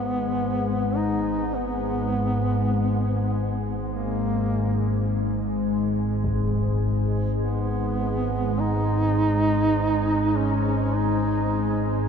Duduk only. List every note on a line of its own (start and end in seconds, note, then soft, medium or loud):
0.00 0.98 B3 loud
0.96 1.56 D#4 medium
1.54 3.62 B3 loud
3.88 5.03 A#3 medium
7.42 8.61 B3 medium
8.60 10.38 D#4 loud
10.37 10.97 C#4 medium
10.95 11.86 D#4 medium